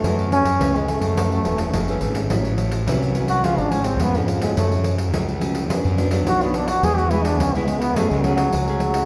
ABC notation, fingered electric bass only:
X:1
M:4/4
L:1/16
Q:1/4=106
K:F#m
V:1 name="Fingered electric bass" clef=bass
F,,3 F,, C,,3 F,,3 E,,,2 F,,,2 G,,,2 | [K:A] A,,,4 =C,,4 ^C,, G,,,3 ^E,,4 | F,,4 C,,4 F,, F,,3 B,,,4 | E,,4 C,,4 F,, C,,3 C,,4 |]